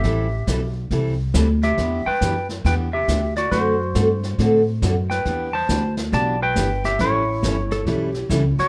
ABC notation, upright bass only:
X:1
M:4/4
L:1/8
Q:"Swing" 1/4=138
K:Em
V:1 name="Upright bass" clef=bass
A,,,2 B,,,2 C,,2 D,,2 | E,, z F,,2 E,,2 D,,2 | F,,2 G,,2 A,,2 F,,2 | E,,2 D,,2 B,,,2 G,,,2 |
A,,,2 G,,,2 B,,,2 ^C,, z |]